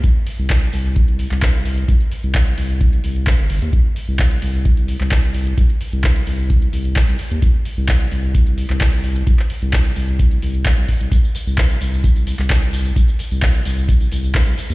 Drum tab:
HH |x-o-xxo-xxoxxxox|xxoxxxo-xxoxxxox|x-o-xxo-xxoxxxox|xxoxxxo-xxoxxxox|
TB |----------------|----------------|----------------|----------------|
CP |----x------xx---|----x-------x---|----x------xx---|----x-------x---|
BD |o---o---o---o---|o---o---o---o---|o---o---o---o---|o---o---o---o---|

HH |x-o-xxo-xxoxxxox|xxoxxxoxxxoxxxox|x-o-xxo-xxoxxxox|xxoxxxo-xxoxxxox|
TB |----------------|----------------|xxxxxxxxxxxxxxxx|xxxxxxxxxxxxxxxx|
CP |----x------xx---|-x--x-------x---|----x------xx---|----x-------x---|
BD |o---o---o---o---|o---o---o---o-o-|o---o---o---o---|o---o---o---o---|